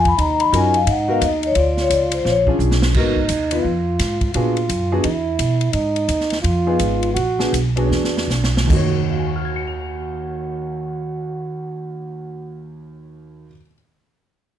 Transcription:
Already playing: F2 F4
0.05 B5, kick, ride
0.18 D#2 D#4 A#5, kick, ride
0.40 B5, ride
0.52 F#2 C#4 F4 F#4 A#4 G#5, kick, hi-hat pedal, ride
0.74 F5, ride
0.85 G#2 D#4, kick, ride
0.91 F#5
1.08 B3 D#4 F#4 A#4 F5
1.21 D#2 D#5, kick, hi-hat pedal, ride
1.43 C#5, ride
1.55 D2 F4, kick, ride
1.60 D5
1.77 snare
1.81 C#5
1.90 C#2, kick, hi-hat pedal, ride
1.94 D5
2.12 C5, ride
2.25 A#1, kick, snare
2.30 C#5
2.47 C#4 D4 F4 G#4, kick
2.59 B1, hi-hat pedal
2.71 snare
2.82 snare
2.94 G#1 B3 D#4 F#4 A#4, kick, crash
3.16 kick
3.29 D#2, kick, hi-hat pedal, ride
3.51 B3 D#4 F4 B4, ride
3.63 F2 F4, kick
3.99 G#2, kick, snare, hi-hat pedal, ride
4.21 kick, ride
4.34 A#2 B3 D4 F4 F#4 G#4, kick, ride
4.57 ride
4.69 F#2, kick, hi-hat pedal, ride
4.92 B3 D4 F#4 G#4
5.03 E2 E4, kick, ride
5.39 B2, kick, hi-hat pedal, ride
5.61 ride
5.72 G#2 D#4, kick, ride
5.96 ride
6.08 D#2, kick, hi-hat pedal, ride
6.21 snare
6.30 snare, ride
6.41 F2 F4, kick, ride
6.67 B3 D#4 F4 G#4
6.79 G#1, kick, hi-hat pedal, ride
7.03 ride
7.14 A#1 F#4, kick, ride
7.39 B3 D4 F#4 G#4, snare
7.52 B1, kick, hi-hat pedal, ride
7.76 B3 D4 F#4 G#4, ride
7.83 C#4
7.89 E2 D4, snare
8.04 snare
8.18 snare
8.28 B1, snare, hi-hat pedal
8.44 snare
8.57 snare
8.64 D#2 D#3
8.69 D#2 D#4 F#4, kick, floor tom, crash
8.76 C#5
9.11 F5
9.18 G#5
9.27 C#6
9.36 F6
9.45 G#6
9.56 C#7
9.67 F7

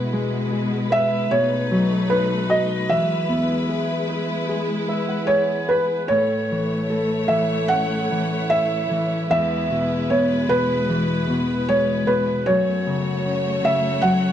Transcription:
Already playing: B2 G#3 B3 E4 B4
0.13 G#3
0.52 G#4
0.90 B4 E5
1.31 B2 A3 D#4 C#5
1.71 F#3
2.10 D#4 B4
2.49 F#4 D#5
2.89 E3 G#3 E4 E5
3.29 B3
3.69 G#4
4.08 B4
4.49 G#4
4.88 B4 E5
5.08 F#5
5.27 G#4 C#5 G#5
5.69 B4 B5
6.07 A2 A3 E4 C#5
6.51 E3
6.90 A4
7.28 E3 E5
7.68 C#4 F#5
8.11 E3
8.50 E4 E5
8.90 E3
9.30 E2 G#3 B4 E5
9.70 B2
10.10 B3 C#5
10.49 B2 B4
10.89 E3
11.29 B2
11.69 G#3 C#5
12.07 B2 B4
12.46 F#2 A3 F#4 C#5
12.86 C#3
13.25 C#4
13.64 C#3 E5
14.02 F#3 F#5

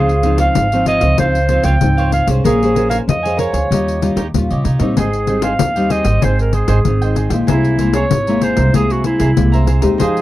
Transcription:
Already playing: C#2 C#3 F3 C4 D#4 F4 G#4 C5 C#5 F5
0.09 pandeiro
0.23 F3 C4 D#4 F4 C5 C#5 F5, pandeiro
0.38 F4 C5 C#5 F5, pandeiro
0.55 G#1 G#2, pandeiro
0.72 F3 C4 D#4 C5 C#5 F5, pandeiro
0.86 F4 C5 C#5 D#5 F5, pandeiro
1.00 C#2 C5 C#5 F5, pandeiro
1.18 C#2 C#3 F3 C4 D#4 F4 C5 F5, pandeiro
1.35 pandeiro
1.49 F3 C4 D#4 F4 C5 C#5 F5, pandeiro
1.63 C#2 F4 C5 C#5 F5 G5, pandeiro
1.81 C#2 G#2 F3 C4 D#4, pandeiro
1.97 C5 C#5 F5, pandeiro
2.12 F4 C5 C#5 F5, pandeiro
2.27 C2 C#4 G#4 C5 C#5 F5, pandeiro
2.44 A#1 A#3 G#4 A#4 C#5 F5 G#5, pandeiro
2.63 C#4 G#4 C5, pandeiro
2.75 C#4 G#4 A#4 C5 C#5 F5 G#5, pandeiro
2.89 A#4 C#5 F5 G#5, pandeiro
3.08 F2 F3 D#5, pandeiro
3.23 C#4 G#4 C5 C#5 F5 G#5, pandeiro
3.37 A#4 C#5 F5 G#5, pandeiro
3.52 D2 C#5 F5 G#5, pandeiro
3.71 D#2 D#3 G3 C#4 D#4 F4 G4 C#5 D#5, pandeiro
3.88 pandeiro
4.01 G3 C#4 D#4 F4 G4 C#5 D#5, pandeiro
4.16 D#2 D#4 G4 C#5 D#5, pandeiro
4.34 D#2 A#2 G3 C#4 F4, pandeiro
4.50 C#3 G4 C#5 D#5, pandeiro
4.64 C3 D#4 G4 C#5 D#5, pandeiro
4.79 A#2 G3 C4 D#4 G4 C#5 D#5, pandeiro
4.97 G#1 G#2 G#4 C5 D#5 G5, pandeiro
5.13 pandeiro
5.27 G3 C4 D#4 G#4 C5 D#5 G5, pandeiro
5.42 G#4 C5 D#5 F5 G5, pandeiro
5.59 D#2 D#3, pandeiro
5.76 G3 C4 D#4 C5 D#5 G5, pandeiro
5.90 G#4 C5 D#5 G5, pandeiro
6.05 G#1 C5 D#5 G5, pandeiro
6.21 G#1 G#2 C4 D#4 G#4 C5 D#5 G5, pandeiro
6.39 A#4, pandeiro
6.53 G#4 C5 D#5 G5, pandeiro
6.68 G#1 G#4 C5 D#5 G5, pandeiro
6.85 G#1 D#3 C4 D#4, pandeiro
7.02 C5 D#5 G5, pandeiro
7.15 G#4 C5 D#5 G5, pandeiro
7.30 A#1 G#3 A#3 E4 C5 D#5 G5, pandeiro
7.47 C2 C3 E4 G#4 C5 E5 A#5, pandeiro
7.65 pandeiro
7.79 G#3 A#3 E4 G#4 C5 E5 A#5, pandeiro
7.93 G#4 C5 C#5 E5 A#5, pandeiro
8.11 G#1 C3, pandeiro
8.27 G#3 A#3 E4 C5 E5 A#5, pandeiro
8.41 G#4 C5 E5 A#5, pandeiro
8.57 C2 C5 E5 A#5, pandeiro
8.74 C2 C3 G#3 A#3 E4 G#4 C5 E5 A#5, pandeiro
8.90 F#4, pandeiro
9.04 E4 G#4 C5 E5 A#5, pandeiro
9.20 C2 G#4 C5 E5 A#5, pandeiro
9.37 C2 C3 G#3 A#3 E4, pandeiro
9.52 C5 E5 A#5, pandeiro
9.67 G#4 C5 E5 A#5, pandeiro
9.81 D#2 G#3 D#4 G4 C5 E5 A#5, pandeiro
9.98 F2 F3 D#4 G#4 C5 F5, pandeiro
10.17 pandeiro

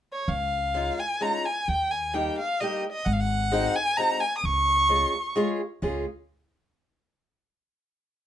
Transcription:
0.12 C#5
0.28 C#2 F5
0.74 G#3 C#4 D#4 F4
0.99 G#5
1.21 G#3 C#4 D#4 F4 A#5
1.45 G#5
1.68 D#2 G5
1.91 G#5
2.13 G3 A#3 D#4 G4 G5
2.38 F5
2.60 G3 A#3 D#4 G4 D#5
2.92 D#5
3.05 G#1 F#5
3.13 F5
3.20 F#5
3.51 G#3 C4 D#4 F#4
3.76 G#5
3.97 G#3 C4 D#4 F#4 A#5
4.20 G#5
4.37 D#6
4.44 C#2 C#6
4.89 G#3 C#4 F4 G#4
5.36 G#3 C#4 F4 G#4
5.82 C#2 G#3 C#4 F4 G#4

